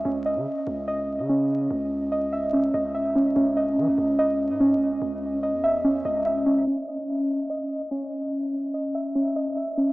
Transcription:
<<
  \new Staff \with { instrumentName = "Synth keys" } { \time 4/4 \key cis \minor \tempo 4 = 145 cis'8 dis''4. dis''4 cis'4~ | cis'4 dis''8 e''8 cis'8 dis''8 e''8 cis'8 | cis'8 dis''4. dis''4 cis'4~ | cis'4 dis''8 e''8 cis'8 dis''8 e''8 cis'8 |
cis'8 dis''4. dis''4 cis'4~ | cis'4 dis''8 e''8 cis'8 dis''8 e''8 cis'8 | }
  \new Staff \with { instrumentName = "808-style bass" } { \clef bass \time 4/4 \key cis \minor cis,8. cis16 r8 cis,4~ cis,16 cis4~ cis16 | cis,2~ cis,8 cis,4. | cis,4 e16 cis,16 cis,4~ cis,16 gis,8~ gis,32 cis,8~ cis,32 | cis,4~ cis,16 e,4~ e,16 cis,4. |
r1 | r1 | }
>>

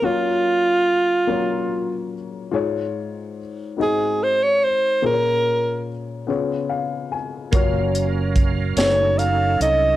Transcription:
<<
  \new Staff \with { instrumentName = "Alto saxophone" } { \time 6/8 \key ges \lydian \tempo 4. = 48 f'2~ f'8 r8 | r4. aes'8 c''16 des''16 c''8 | bes'4 r2 | r4. des''8 f''8 ees''8 | }
  \new Staff \with { instrumentName = "Upright piano" } { \time 6/8 \key ges \lydian << { r2. | r2. | r2 f''8 aes''8 | r2. | } \\ { <ges bes des' f' des''>4 r8 <ges bes des' f' des''>4 r8 | <f' aes' des''>4 r8 <ces' c' ees' ges' aes' ees''>4 r8 | <bes des' f' aes' c'' des''>4 r8 <ces' des' f' aes' des''>4 r8 | <bes des' f' ges' des''>4 r8 <a des' ees' ges' des''>4 r8 | } >> }
  \new Staff \with { instrumentName = "Upright piano" } { \clef bass \time 6/8 \key ges \lydian r2. | aes,4. aes,4. | bes,4. des4. | r2. | }
  \new Staff \with { instrumentName = "Tonewheel organ" } { \time 6/8 \key ges \lydian r2. | r2. | r2. | <ges des' bes' f''>4. <ges des' ees' a'>4. | }
  \new Staff \with { instrumentName = "Fingered electric bass" } { \clef bass \time 6/8 \key ges \lydian r2. | r2. | r2. | ges,,4. ges,,4 c,8 | }
  \new DrumStaff \with { instrumentName = "Drums" } \drummode { \time 6/8 r4. r4. | r4. r4. | r4. r4. | <hh bd>8 hh8 <hh bd>8 <hh sn>8 hh8 hh8 | }
>>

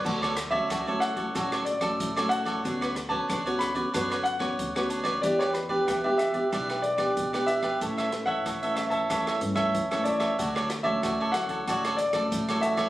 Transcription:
<<
  \new Staff \with { instrumentName = "Grand piano" } { \time 4/4 \key d \major \tempo 4 = 93 d''8. e''8. fis''4 d''4 fis''8~ | fis''8. a''8. b''4 fis''4 r8 | d''16 cis''16 b'8 g''16 e''16 e''4 d''4 e''8~ | e''8. fis''8. e''16 a''4~ a''16 r8 d''8~ |
d''8. e''8. fis''4 d''4 e''8 | }
  \new Staff \with { instrumentName = "Cavaquinho" } { \time 4/4 \key d \major <fis' a' cis'' d''>16 <a' cis'' d''>16 r16 <a' cis'' d''>16 <fis' a' cis'' d''>16 <a' cis'' d''>8 <a' cis'' d''>16 <fis' a' cis'' d''>16 <a' cis'' d''>16 r16 <a' d''>8 <a' cis'' d''>16 <fis' a' cis'' d''>16 <a' cis'' d''>16 | <d' b' cis'' d''>16 <b' cis'' d''>16 r16 <b' cis'' d''>16 <d' b' cis'' d''>16 <b' cis'' d''>8 <b' cis'' d''>16 <d' b' cis'' d''>16 <b' cis'' d''>16 r16 <b' cis'' d''>8 <b' cis'' d''>16 <d' b' cis'' d''>16 <b' cis'' d''>16 | <e' g' b' d''>16 <g' b' d''>16 r16 <g' b' d''>16 <e' g' b' d''>16 <g' b' d''>8 <g' b' d''>16 <e' g' b' d''>16 <g' b' d''>16 r16 <g' b' d''>8 <g' b' d''>16 <e' g' b' d''>16 <g' b' d''>16 | <e' a' cis'' e''>16 <a' cis'' e''>16 r16 <a' cis'' e''>16 <e' a' cis'' e''>16 <a' cis'' e''>8 <a' cis'' e''>16 <e' a' cis'' e''>16 <a' cis'' e''>16 r16 <a' cis'' e''>8 <a' cis'' e''>16 <e' a' cis'' e''>16 <a' cis'' e''>16 |
<fis' a' cis'' d''>16 <a' cis'' d''>16 r16 <a' cis'' d''>16 <fis' a' cis'' d''>16 <a' cis'' d''>8 <a' cis'' d''>16 <fis' a' cis'' d''>16 <a' cis'' d''>16 r16 <a' d''>8 <a' cis'' d''>16 <fis' a' cis'' d''>16 <a' cis'' d''>16 | }
  \new Staff \with { instrumentName = "Nylon-string guitar" } { \time 4/4 \key d \major << { <fis a>8 r16 <fis a cis'>8 <fis a cis'>8 <fis a cis'>16 <fis a cis'>8. <fis a cis'>8 <fis a cis'>8. | <b cis' fis'>8 r16 <b cis' fis'>8 <b cis' fis'>8 <b cis' fis'>16 <b cis' fis'>8. <b cis' fis'>8 <b cis' fis'>8. | <b d' g'>8 r16 <b d' g'>8 <b d' g'>8 <b d' g'>16 <b d'>8 r16 <b d' g'>8 <b d' g'>8. | <e a cis'>8 <e a cis'>8. <e a cis'>8. <e a cis'>16 r16 <e a cis'>8. <e a cis'>8. |
<fis a>8 r16 <fis a cis'>8. <fis a cis'>8 <fis a cis'>8 r16 <fis a cis'>8 <fis a cis'>8. | } \\ { d4 a,4 d4 a,4 | d4 d4 d4 d4 | e4 b,4 e4 b,4 | a,4 e4 a,4 e4 |
d4 a,4 d4 a,4 | } >> }
  \new Staff \with { instrumentName = "Upright bass" } { \clef bass \time 4/4 \key d \major d,4 d,4 a,,4 a,,4 | d,4 d,4 fis,4 d,4 | e,4 e,4 b,,4 b,,4 | a,,4 a,,4 e,8 g,8 fis,8 e,8 |
d,4 d,4 a,,4 a,,4 | }
  \new DrumStaff \with { instrumentName = "Drums" } \drummode { \time 4/4 <cymc bd>16 ss16 <hh ss>16 bd16 <hh bd ss>8 <hh ss>16 <hh bd>16 <hh bd ss>16 <hh ss>16 hh16 <hh bd ss>16 <hh bd>16 <hh ss>16 hh16 <hh bd ss>16 | <hh bd>16 <hh ss>16 <hh ss>16 bd16 <hh bd ss>16 hh16 <hh ss>16 <hh bd>16 <hh bd ss>16 <hh ss>16 hh16 <bd ss>16 <hh bd>16 <hh ss>16 hh16 <hh bd ss>16 | <hh bd>16 ss16 <hh ss>16 bd16 <hh bd ss>8 <hh ss>16 <hh bd>16 <hh bd ss>16 <hh ss>16 hh16 <hh bd ss>16 <hh bd>16 <hh ss>16 hh16 <hh bd ss>16 | <hh bd>16 <hh ss>16 <hh ss>16 bd16 <hh bd ss>16 hh16 <hh ss>16 <hh bd>16 <hh bd ss>16 <hh ss>16 hh16 <bd ss>16 <hh bd>16 <hh ss>16 hh16 <hh bd ss>16 |
<hh bd>16 ss16 <hh ss>16 bd16 <hh bd ss>8 <hh ss>16 <hh bd>16 <hh bd ss>16 <hh ss>16 hh16 <hh bd ss>16 <hh bd>16 <hh ss>16 hh16 <hh bd ss>16 | }
>>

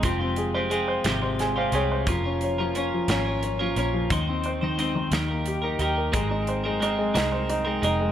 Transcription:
<<
  \new Staff \with { instrumentName = "Clean electric guitar" } { \time 6/8 \key aes \major \tempo 4. = 59 <f, f aes c' f' g'>16 <aes c' f' g'>8 <aes c' f' g'>16 <aes c' f' g'>8 <f, f aes c' f' g'>16 <aes c' f' g'>8 <aes c' f' g'>16 <aes c' f' g'>8 | <f, f bes des' f' bes'>16 <bes des' f' bes'>8 <bes des' f' bes'>16 <bes des' f' bes'>8 <f, f bes des' f' bes'>16 <bes des' f' bes'>8 <bes des' f' bes'>16 <bes des' f' bes'>8 | <ees aes c' ees' c''>16 <c' ees' c''>8 <c' ees' c''>16 <aes c' ees' c''>8 <ees ees' g' bes'>16 <ees' g' bes'>8 <ees' g' bes'>16 <ees ees' g' bes'>8 | <aes c' ees' bes'>16 <c' ees' bes'>8 <c' ees' bes'>16 <aes c' ees' bes'>8 <aes c' ees' bes'>16 <c' ees' bes'>8 <c' ees' bes'>16 <aes c' ees' bes'>8 | }
  \new Staff \with { instrumentName = "Grand piano" } { \time 6/8 \key aes \major << { r2 aes''16 f''16 des''8 | r2. | r2. | r2. | } \\ { f16 c'16 aes'16 c''16 aes'16 c''16 c16 c''16 aes'16 c''16 aes'16 c''16 | f16 des'16 des''16 f16 des'16 f16 des'16 des''16 des'16 f16 des'16 f16 | ees16 c'16 c''16 ees16 c'16 ees16 ees16 bes16 g'16 bes'16 g'16 bes'16 | aes16 ees'16 c''16 aes16 ees'16 aes16 ees'16 c''16 ees'16 aes16 ees'16 aes16 | } >> }
  \new Staff \with { instrumentName = "Fingered electric bass" } { \clef bass \time 6/8 \key aes \major f,,4. aes,,4 c,8 | f,,4. aes,,4 bes,,8 | ees,4. ees,4 ees,8 | aes,,4. c,4 f,,8 | }
  \new DrumStaff \with { instrumentName = "Drums" } \drummode { \time 6/8 <hh bd>8 hh8 hh8 <hh sn>8 <hh sn>8 hh8 | <hh bd>8 hh8 hh8 <hh sn>8 hh8 hh8 | <hh bd>8 hh8 hh8 <hh sn>8 hh8 hh8 | <hh bd>8 hh8 hh8 <hh sn>8 hh8 hh8 | }
>>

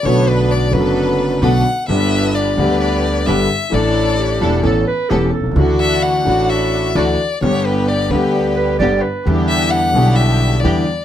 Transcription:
<<
  \new Staff \with { instrumentName = "Violin" } { \time 4/4 \key g \lydian \tempo 4 = 130 cis''8 b'8 d''8 b'4. fis''4 | e''4 d''4 d''4 e''4 | d''2 r2 | r8 e''8 fis''4 e''4 d''4 |
cis''8 b'8 d''8 b'4. r4 | r8 e''8 fis''4 e''4 d''4 | }
  \new Staff \with { instrumentName = "Clarinet" } { \time 4/4 \key g \lydian r1 | r1 | r4 g'4 a'8 b'8 g'8 a'8~ | a'16 r2. r8. |
r2 r8 b'8 d''8 b'8~ | b'16 r2. r8. | }
  \new Staff \with { instrumentName = "String section" } { \time 4/4 \key g \lydian <d' a' b'>4. <d' a' b'>4. <d' a' b'>8 r8 | <d' g' b'>4. <d' g' b'>4. <d' g' b'>8 r8 | <d' e' a'>4. <d' e' a'>8 <b cis' a'>8 r8 <b cis' a'>8 r8 | <d' e' fis'>4. <d' e' fis'>4. <d' e' fis'>8 r8 |
<b d' g'>4. <b d' g'>4. <b d' g'>8 r8 | <d' e' g'>4. <d' e' g'>4. <d' e' g'>8 r8 | }
  \new Staff \with { instrumentName = "Grand piano" } { \clef bass \time 4/4 \key g \lydian <b,, b, d a b fis'>4. <fis,, fis, d a b fis'>4. <b,, b, d a b fis'>8 r8 | <g,, g, d g b g'>4. <d, d g b g'>4. <g,, g, d g b g'>8 r8 | <a,, a, e a d' a'>4. <e,, e, e a d' a'>8 <a,, a, e b cis' a'>8 r8 <e,, e, e b cis' a'>8 r32 b,,32 c,32 cis,32 | <d, d e a d' fis'>4. <a,, a, e a d' fis'>4. <d, d e a d' fis'>8 r8 |
<g,, g, d g b g'>4. <d, d g b g'>4. <g,, g, d g b g'>8 r8 | <e, d e g b e'>4. <b,, b, d g b e'>4. <e, d e g b e'>8 r8 | }
  \new Staff \with { instrumentName = "Upright bass" } { \clef bass \time 4/4 \key g \lydian b,,4~ b,,16. r32 fis,,4~ fis,,16. r32 b,,16. r8 r32 | g,,4~ g,,16. r32 d,4~ d,16. r32 g,,16. r8 r32 | a,,4~ a,,16. r32 e,,16. r32 a,,16. r8 r32 e,,16. r16 b,,32 c,32 cis,32 | d,4~ d,16. r32 a,,4~ a,,16. r32 d,16. r8 r32 |
g,,4~ g,,16. r32 d,4~ d,16. r32 g,,16. r8 r32 | e,4~ e,16. r32 b,,4~ b,,16. r32 e,16. r8 r32 | }
>>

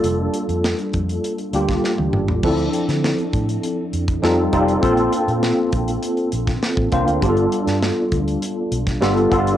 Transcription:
<<
  \new Staff \with { instrumentName = "Tine electric piano" } { \time 4/4 \key g \dorian \tempo 4 = 100 <g bes d' f' a'>4. r4 <g bes d' f' g'>4. | <f c' d' e' a'>2 r4 <g c' ees' f' a'>8 <g c' ees' f' a'>8 | <bes c' d' f' a'>2 r4. <bes c' d' f' c''>8 | <g b d' f' g' a'>2 r4 <g b d' f' a'>8 <g b d' f' a'>8 | }
  \new Staff \with { instrumentName = "Fingered electric bass" } { \clef bass \time 4/4 \key g \dorian f,,8 r16 f,8 r16 f,8 r8 d,8 r16 d,16 g,,16 a,,16 | d,8 r16 d8 r16 a,8 r8 f,8 f,8 f,,8 | bes,,8 r16 bes,8 r16 bes,,8 r8 bes,,8 r16 a,,16 c,16 d,16 | g,,8 r16 g,8 r16 d,8 r8 b,,8 g,,8 g,,8 | }
  \new DrumStaff \with { instrumentName = "Drums" } \drummode { \time 4/4 hh8 hh16 hh16 sn16 hh16 <hh bd>16 hh16 hh16 hh16 hh16 <hh bd sn>16 sn16 tommh16 toml16 tomfh16 | <cymc bd>16 hh16 hh16 <hh sn>16 sn16 hh16 <hh bd>16 hh16 hh8 hh16 <hh bd>16 sn8 <hh bd>16 hh16 | <hh bd>16 hh16 hh16 hh16 sn8 <hh bd>16 hh16 hh16 hh16 hh16 <hh bd sn>16 sn16 bd16 <hh bd>16 hh16 | <hh bd>16 hh16 hh16 <hh sn>16 sn8 <hh bd>16 hh16 hh8 hh16 <hh bd sn>16 sn16 hh16 <hh bd>16 hh16 | }
>>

